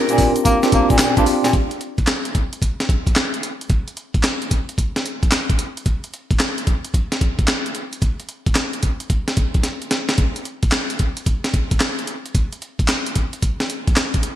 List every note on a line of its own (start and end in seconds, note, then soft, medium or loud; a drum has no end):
0.00 0.09 C4 medium
0.00 0.10 D4 medium
0.00 0.10 F4 medium
0.00 0.11 G4 loud
0.00 1.24 A#4 medium
0.09 0.32 A#2 medium
0.09 0.53 C4 medium
0.09 0.53 D4 medium
0.09 0.53 F4 medium
0.09 0.53 G4 medium
0.09 closed hi-hat medium
0.09 shaker medium
0.18 kick loud
0.18 open hi-hat medium
0.18 tambourine medium
0.18 shaker medium
0.36 closed hi-hat medium
0.36 shaker medium
0.45 0.60 A#3 loud
0.45 kick medium
0.45 closed hi-hat medium
0.45 tambourine medium
0.45 shaker medium
0.63 1.07 C4 medium
0.63 1.07 D4 medium
0.63 1.07 F4 medium
0.63 1.07 G4 loud
0.63 snare medium
0.63 closed hi-hat medium
0.63 shaker medium
0.72 0.87 A#3 loud
0.72 kick medium
0.72 closed hi-hat medium
0.72 tambourine medium
0.90 0.98 A#2 loud
0.90 kick medium
0.90 closed hi-hat soft
0.90 shaker soft
0.99 1.14 A#2 medium
0.99 1.25 G5 medium
0.99 snare loud
0.99 clap loud
0.99 closed hi-hat medium
0.99 tambourine loud
0.99 shaker medium
1.17 1.25 G2 medium
1.17 1.53 C4 medium
1.17 1.54 D4 medium
1.17 1.54 F4 medium
1.17 1.54 G4 loud
1.17 kick loud
1.17 closed hi-hat medium
1.17 shaker soft
1.26 1.51 F5 medium
1.26 open hi-hat medium
1.26 tambourine medium
1.26 shaker medium
1.44 1.52 A#2 medium
1.44 snare medium
1.44 closed hi-hat medium
1.44 shaker medium
1.53 kick loud
1.53 closed hi-hat medium
1.71 closed hi-hat soft
1.81 closed hi-hat medium
1.98 kick medium
1.98 closed hi-hat soft
2.07 snare loud
2.07 clap medium
2.07 closed hi-hat medium
2.25 closed hi-hat medium
2.35 kick medium
2.35 closed hi-hat medium
2.53 closed hi-hat medium
2.62 kick medium
2.62 closed hi-hat medium
2.80 snare medium
2.80 closed hi-hat medium
2.89 kick medium
2.89 closed hi-hat medium
3.07 kick medium
3.07 closed hi-hat soft
3.16 snare loud
3.16 clap medium
3.16 closed hi-hat medium
3.34 closed hi-hat medium
3.43 closed hi-hat medium
3.61 closed hi-hat soft
3.70 kick loud
3.70 closed hi-hat medium
3.88 closed hi-hat soft
3.97 closed hi-hat medium
4.14 kick medium
4.14 closed hi-hat soft
4.23 snare loud
4.23 clap medium
4.23 closed hi-hat medium
4.42 closed hi-hat medium
4.51 kick medium
4.51 closed hi-hat medium
4.69 closed hi-hat medium
4.78 kick medium
4.78 closed hi-hat medium
4.96 snare medium
4.96 closed hi-hat soft
5.06 closed hi-hat medium
5.23 kick medium
5.23 closed hi-hat soft
5.31 snare loud
5.31 clap medium
5.31 closed hi-hat medium
5.50 kick medium
5.50 closed hi-hat medium
5.59 closed hi-hat medium
5.77 closed hi-hat medium
5.86 kick loud
5.86 closed hi-hat medium
6.04 closed hi-hat soft
6.14 closed hi-hat medium
6.31 kick loud
6.31 closed hi-hat soft
6.39 snare loud
6.39 clap medium
6.39 closed hi-hat medium
6.58 closed hi-hat medium
6.67 kick medium
6.67 closed hi-hat medium
6.85 closed hi-hat medium
6.94 kick medium
6.94 closed hi-hat medium
7.12 snare medium
7.12 closed hi-hat medium
7.21 kick medium
7.21 closed hi-hat medium
7.39 kick medium
7.39 closed hi-hat soft
7.48 snare loud
7.48 clap medium
7.48 closed hi-hat medium
7.66 closed hi-hat medium
7.75 closed hi-hat medium
7.93 closed hi-hat medium
8.02 kick loud
8.02 closed hi-hat medium
8.20 closed hi-hat soft
8.29 closed hi-hat medium
8.46 kick loud
8.46 closed hi-hat soft
8.55 snare loud
8.55 clap medium
8.55 closed hi-hat medium
8.73 closed hi-hat medium
8.83 kick medium
8.83 closed hi-hat medium
9.00 closed hi-hat medium
9.10 kick medium
9.10 closed hi-hat medium
9.28 snare medium
9.28 closed hi-hat medium
9.37 kick medium
9.37 closed hi-hat medium
9.54 kick medium
9.54 closed hi-hat soft
9.63 snare medium
9.63 closed hi-hat medium
9.82 closed hi-hat soft
9.91 snare medium
9.91 closed hi-hat medium
10.09 snare medium
10.09 closed hi-hat soft
10.18 kick loud
10.18 closed hi-hat medium
10.36 closed hi-hat soft
10.45 closed hi-hat medium
10.63 kick medium
10.63 closed hi-hat soft
10.72 snare loud
10.72 clap medium
10.72 closed hi-hat medium
10.90 closed hi-hat medium
10.99 kick medium
10.99 closed hi-hat medium
11.17 closed hi-hat medium
11.26 kick medium
11.26 closed hi-hat medium
11.44 snare medium
11.44 closed hi-hat medium
11.54 kick medium
11.54 closed hi-hat medium
11.71 kick medium
11.71 closed hi-hat soft
11.80 snare loud
11.80 clap medium
11.80 closed hi-hat medium
11.99 closed hi-hat medium
12.07 closed hi-hat medium
12.26 closed hi-hat medium
12.35 kick loud
12.35 closed hi-hat medium
12.53 closed hi-hat soft
12.62 closed hi-hat medium
12.79 kick medium
12.79 closed hi-hat soft
12.88 snare loud
12.88 clap medium
12.88 closed hi-hat medium
13.06 closed hi-hat medium
13.15 kick medium
13.15 closed hi-hat medium
13.33 closed hi-hat medium
13.42 kick medium
13.42 closed hi-hat medium
13.60 snare medium
13.60 closed hi-hat soft
13.70 closed hi-hat medium
13.87 kick medium
13.87 closed hi-hat soft
13.96 snare loud
13.96 clap loud
13.96 closed hi-hat medium
14.14 kick medium
14.14 closed hi-hat medium
14.23 closed hi-hat medium